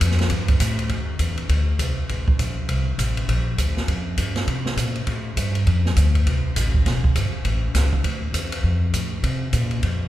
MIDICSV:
0, 0, Header, 1, 4, 480
1, 0, Start_track
1, 0, Key_signature, -1, "minor"
1, 0, Tempo, 297619
1, 1463, Time_signature, 4, 2, 24, 8
1, 16257, End_track
2, 0, Start_track
2, 0, Title_t, "Upright bass"
2, 0, Program_c, 0, 32
2, 11, Note_on_c, 0, 41, 77
2, 472, Note_off_c, 0, 41, 0
2, 482, Note_on_c, 0, 43, 78
2, 954, Note_off_c, 0, 43, 0
2, 963, Note_on_c, 0, 45, 87
2, 1438, Note_off_c, 0, 45, 0
2, 1445, Note_on_c, 0, 38, 74
2, 1912, Note_off_c, 0, 38, 0
2, 1922, Note_on_c, 0, 40, 72
2, 2392, Note_off_c, 0, 40, 0
2, 2402, Note_on_c, 0, 38, 72
2, 2877, Note_off_c, 0, 38, 0
2, 2886, Note_on_c, 0, 36, 76
2, 3359, Note_off_c, 0, 36, 0
2, 3374, Note_on_c, 0, 33, 73
2, 3844, Note_off_c, 0, 33, 0
2, 3853, Note_on_c, 0, 34, 75
2, 4323, Note_off_c, 0, 34, 0
2, 4330, Note_on_c, 0, 36, 76
2, 4802, Note_off_c, 0, 36, 0
2, 4810, Note_on_c, 0, 33, 80
2, 5282, Note_off_c, 0, 33, 0
2, 5290, Note_on_c, 0, 34, 76
2, 5762, Note_off_c, 0, 34, 0
2, 5775, Note_on_c, 0, 38, 76
2, 6240, Note_off_c, 0, 38, 0
2, 6250, Note_on_c, 0, 41, 76
2, 6722, Note_off_c, 0, 41, 0
2, 6735, Note_on_c, 0, 43, 78
2, 7201, Note_off_c, 0, 43, 0
2, 7211, Note_on_c, 0, 48, 82
2, 7677, Note_off_c, 0, 48, 0
2, 7687, Note_on_c, 0, 46, 76
2, 8161, Note_off_c, 0, 46, 0
2, 8171, Note_on_c, 0, 45, 75
2, 8643, Note_off_c, 0, 45, 0
2, 8652, Note_on_c, 0, 43, 78
2, 9123, Note_off_c, 0, 43, 0
2, 9138, Note_on_c, 0, 41, 78
2, 9606, Note_off_c, 0, 41, 0
2, 9616, Note_on_c, 0, 38, 74
2, 10085, Note_off_c, 0, 38, 0
2, 10096, Note_on_c, 0, 36, 76
2, 10566, Note_off_c, 0, 36, 0
2, 10581, Note_on_c, 0, 33, 78
2, 11048, Note_off_c, 0, 33, 0
2, 11055, Note_on_c, 0, 28, 81
2, 11525, Note_off_c, 0, 28, 0
2, 11532, Note_on_c, 0, 31, 74
2, 11808, Note_off_c, 0, 31, 0
2, 12007, Note_on_c, 0, 33, 79
2, 12476, Note_off_c, 0, 33, 0
2, 12486, Note_on_c, 0, 37, 75
2, 12954, Note_off_c, 0, 37, 0
2, 12963, Note_on_c, 0, 38, 82
2, 13434, Note_off_c, 0, 38, 0
2, 13443, Note_on_c, 0, 40, 73
2, 13912, Note_off_c, 0, 40, 0
2, 13922, Note_on_c, 0, 41, 77
2, 14397, Note_off_c, 0, 41, 0
2, 14407, Note_on_c, 0, 45, 78
2, 14876, Note_off_c, 0, 45, 0
2, 14886, Note_on_c, 0, 48, 81
2, 15359, Note_off_c, 0, 48, 0
2, 15372, Note_on_c, 0, 46, 76
2, 15836, Note_off_c, 0, 46, 0
2, 15845, Note_on_c, 0, 41, 70
2, 16257, Note_off_c, 0, 41, 0
2, 16257, End_track
3, 0, Start_track
3, 0, Title_t, "Muted upright bass strokes"
3, 11818, Note_on_c, 9, 29, 38
3, 11979, Note_off_c, 9, 29, 0
3, 16257, End_track
4, 0, Start_track
4, 0, Title_t, "Drums"
4, 14, Note_on_c, 9, 44, 57
4, 14, Note_on_c, 9, 51, 68
4, 18, Note_on_c, 9, 36, 16
4, 175, Note_off_c, 9, 44, 0
4, 175, Note_off_c, 9, 51, 0
4, 179, Note_off_c, 9, 36, 0
4, 182, Note_on_c, 9, 38, 29
4, 301, Note_on_c, 9, 51, 40
4, 330, Note_off_c, 9, 38, 0
4, 330, Note_on_c, 9, 38, 39
4, 462, Note_off_c, 9, 51, 0
4, 477, Note_on_c, 9, 51, 55
4, 490, Note_on_c, 9, 36, 24
4, 491, Note_off_c, 9, 38, 0
4, 639, Note_off_c, 9, 51, 0
4, 652, Note_off_c, 9, 36, 0
4, 777, Note_on_c, 9, 51, 49
4, 785, Note_on_c, 9, 36, 50
4, 938, Note_off_c, 9, 51, 0
4, 946, Note_off_c, 9, 36, 0
4, 967, Note_on_c, 9, 44, 60
4, 967, Note_on_c, 9, 51, 70
4, 972, Note_on_c, 9, 36, 18
4, 1128, Note_off_c, 9, 44, 0
4, 1128, Note_off_c, 9, 51, 0
4, 1133, Note_off_c, 9, 36, 0
4, 1268, Note_on_c, 9, 51, 42
4, 1429, Note_off_c, 9, 51, 0
4, 1442, Note_on_c, 9, 51, 45
4, 1448, Note_on_c, 9, 36, 23
4, 1603, Note_off_c, 9, 51, 0
4, 1609, Note_off_c, 9, 36, 0
4, 1920, Note_on_c, 9, 44, 52
4, 1920, Note_on_c, 9, 51, 57
4, 1927, Note_on_c, 9, 36, 19
4, 2081, Note_off_c, 9, 44, 0
4, 2081, Note_off_c, 9, 51, 0
4, 2088, Note_off_c, 9, 36, 0
4, 2217, Note_on_c, 9, 51, 36
4, 2378, Note_off_c, 9, 51, 0
4, 2408, Note_on_c, 9, 51, 55
4, 2411, Note_on_c, 9, 36, 18
4, 2569, Note_off_c, 9, 51, 0
4, 2573, Note_off_c, 9, 36, 0
4, 2889, Note_on_c, 9, 44, 52
4, 2889, Note_on_c, 9, 51, 61
4, 2893, Note_on_c, 9, 36, 18
4, 3051, Note_off_c, 9, 44, 0
4, 3051, Note_off_c, 9, 51, 0
4, 3054, Note_off_c, 9, 36, 0
4, 3375, Note_on_c, 9, 51, 47
4, 3376, Note_on_c, 9, 36, 21
4, 3537, Note_off_c, 9, 36, 0
4, 3537, Note_off_c, 9, 51, 0
4, 3672, Note_on_c, 9, 36, 53
4, 3833, Note_off_c, 9, 36, 0
4, 3856, Note_on_c, 9, 36, 17
4, 3856, Note_on_c, 9, 44, 46
4, 3856, Note_on_c, 9, 51, 53
4, 4017, Note_off_c, 9, 36, 0
4, 4017, Note_off_c, 9, 44, 0
4, 4017, Note_off_c, 9, 51, 0
4, 4333, Note_on_c, 9, 51, 54
4, 4336, Note_on_c, 9, 36, 17
4, 4494, Note_off_c, 9, 51, 0
4, 4498, Note_off_c, 9, 36, 0
4, 4817, Note_on_c, 9, 36, 18
4, 4818, Note_on_c, 9, 44, 51
4, 4818, Note_on_c, 9, 51, 57
4, 4978, Note_off_c, 9, 36, 0
4, 4979, Note_off_c, 9, 44, 0
4, 4979, Note_off_c, 9, 51, 0
4, 5115, Note_on_c, 9, 51, 41
4, 5276, Note_off_c, 9, 51, 0
4, 5299, Note_on_c, 9, 36, 17
4, 5302, Note_on_c, 9, 51, 57
4, 5460, Note_off_c, 9, 36, 0
4, 5463, Note_off_c, 9, 51, 0
4, 5778, Note_on_c, 9, 36, 22
4, 5778, Note_on_c, 9, 44, 56
4, 5778, Note_on_c, 9, 51, 56
4, 5939, Note_off_c, 9, 36, 0
4, 5939, Note_off_c, 9, 44, 0
4, 5939, Note_off_c, 9, 51, 0
4, 6082, Note_on_c, 9, 38, 30
4, 6243, Note_off_c, 9, 38, 0
4, 6257, Note_on_c, 9, 36, 19
4, 6259, Note_on_c, 9, 51, 53
4, 6418, Note_off_c, 9, 36, 0
4, 6421, Note_off_c, 9, 51, 0
4, 6734, Note_on_c, 9, 44, 44
4, 6734, Note_on_c, 9, 51, 64
4, 6737, Note_on_c, 9, 36, 19
4, 6895, Note_off_c, 9, 44, 0
4, 6895, Note_off_c, 9, 51, 0
4, 6898, Note_off_c, 9, 36, 0
4, 7025, Note_on_c, 9, 51, 40
4, 7032, Note_on_c, 9, 38, 36
4, 7186, Note_off_c, 9, 51, 0
4, 7193, Note_off_c, 9, 38, 0
4, 7219, Note_on_c, 9, 36, 20
4, 7219, Note_on_c, 9, 51, 51
4, 7380, Note_off_c, 9, 36, 0
4, 7380, Note_off_c, 9, 51, 0
4, 7515, Note_on_c, 9, 38, 36
4, 7676, Note_off_c, 9, 38, 0
4, 7699, Note_on_c, 9, 36, 21
4, 7699, Note_on_c, 9, 44, 54
4, 7699, Note_on_c, 9, 51, 55
4, 7860, Note_off_c, 9, 36, 0
4, 7860, Note_off_c, 9, 44, 0
4, 7860, Note_off_c, 9, 51, 0
4, 7991, Note_on_c, 9, 51, 34
4, 8153, Note_off_c, 9, 51, 0
4, 8172, Note_on_c, 9, 51, 53
4, 8178, Note_on_c, 9, 36, 23
4, 8334, Note_off_c, 9, 51, 0
4, 8340, Note_off_c, 9, 36, 0
4, 8660, Note_on_c, 9, 36, 23
4, 8660, Note_on_c, 9, 44, 46
4, 8660, Note_on_c, 9, 51, 63
4, 8821, Note_off_c, 9, 36, 0
4, 8821, Note_off_c, 9, 44, 0
4, 8821, Note_off_c, 9, 51, 0
4, 8951, Note_on_c, 9, 51, 38
4, 9113, Note_off_c, 9, 51, 0
4, 9140, Note_on_c, 9, 36, 19
4, 9140, Note_on_c, 9, 51, 47
4, 9301, Note_off_c, 9, 36, 0
4, 9302, Note_off_c, 9, 51, 0
4, 9445, Note_on_c, 9, 38, 32
4, 9606, Note_off_c, 9, 38, 0
4, 9620, Note_on_c, 9, 44, 51
4, 9620, Note_on_c, 9, 51, 56
4, 9623, Note_on_c, 9, 36, 16
4, 9781, Note_off_c, 9, 44, 0
4, 9781, Note_off_c, 9, 51, 0
4, 9784, Note_off_c, 9, 36, 0
4, 9920, Note_on_c, 9, 51, 39
4, 10081, Note_off_c, 9, 51, 0
4, 10104, Note_on_c, 9, 36, 20
4, 10106, Note_on_c, 9, 51, 54
4, 10265, Note_off_c, 9, 36, 0
4, 10268, Note_off_c, 9, 51, 0
4, 10582, Note_on_c, 9, 44, 62
4, 10582, Note_on_c, 9, 51, 65
4, 10583, Note_on_c, 9, 36, 17
4, 10743, Note_off_c, 9, 44, 0
4, 10743, Note_off_c, 9, 51, 0
4, 10744, Note_off_c, 9, 36, 0
4, 10879, Note_on_c, 9, 36, 42
4, 11040, Note_off_c, 9, 36, 0
4, 11062, Note_on_c, 9, 51, 53
4, 11063, Note_on_c, 9, 36, 23
4, 11069, Note_on_c, 9, 38, 34
4, 11223, Note_off_c, 9, 51, 0
4, 11224, Note_off_c, 9, 36, 0
4, 11230, Note_off_c, 9, 38, 0
4, 11355, Note_on_c, 9, 36, 49
4, 11516, Note_off_c, 9, 36, 0
4, 11539, Note_on_c, 9, 36, 20
4, 11540, Note_on_c, 9, 44, 46
4, 11540, Note_on_c, 9, 51, 61
4, 11701, Note_off_c, 9, 36, 0
4, 11701, Note_off_c, 9, 44, 0
4, 11701, Note_off_c, 9, 51, 0
4, 12010, Note_on_c, 9, 51, 53
4, 12015, Note_on_c, 9, 36, 25
4, 12171, Note_off_c, 9, 51, 0
4, 12176, Note_off_c, 9, 36, 0
4, 12492, Note_on_c, 9, 44, 59
4, 12492, Note_on_c, 9, 51, 62
4, 12494, Note_on_c, 9, 36, 17
4, 12499, Note_on_c, 9, 38, 35
4, 12654, Note_off_c, 9, 44, 0
4, 12654, Note_off_c, 9, 51, 0
4, 12655, Note_off_c, 9, 36, 0
4, 12660, Note_off_c, 9, 38, 0
4, 12787, Note_on_c, 9, 36, 47
4, 12949, Note_off_c, 9, 36, 0
4, 12970, Note_on_c, 9, 51, 53
4, 12972, Note_on_c, 9, 36, 21
4, 13131, Note_off_c, 9, 51, 0
4, 13133, Note_off_c, 9, 36, 0
4, 13450, Note_on_c, 9, 44, 55
4, 13450, Note_on_c, 9, 51, 59
4, 13451, Note_on_c, 9, 36, 16
4, 13611, Note_off_c, 9, 44, 0
4, 13611, Note_off_c, 9, 51, 0
4, 13613, Note_off_c, 9, 36, 0
4, 13743, Note_on_c, 9, 51, 56
4, 13905, Note_off_c, 9, 51, 0
4, 13931, Note_on_c, 9, 36, 20
4, 14092, Note_off_c, 9, 36, 0
4, 14411, Note_on_c, 9, 44, 57
4, 14411, Note_on_c, 9, 51, 60
4, 14414, Note_on_c, 9, 36, 17
4, 14572, Note_off_c, 9, 44, 0
4, 14572, Note_off_c, 9, 51, 0
4, 14575, Note_off_c, 9, 36, 0
4, 14895, Note_on_c, 9, 36, 23
4, 14895, Note_on_c, 9, 51, 59
4, 15056, Note_off_c, 9, 36, 0
4, 15056, Note_off_c, 9, 51, 0
4, 15365, Note_on_c, 9, 44, 42
4, 15365, Note_on_c, 9, 51, 59
4, 15373, Note_on_c, 9, 36, 24
4, 15526, Note_off_c, 9, 44, 0
4, 15526, Note_off_c, 9, 51, 0
4, 15534, Note_off_c, 9, 36, 0
4, 15657, Note_on_c, 9, 51, 35
4, 15818, Note_off_c, 9, 51, 0
4, 15848, Note_on_c, 9, 51, 53
4, 15853, Note_on_c, 9, 36, 21
4, 16010, Note_off_c, 9, 51, 0
4, 16014, Note_off_c, 9, 36, 0
4, 16257, End_track
0, 0, End_of_file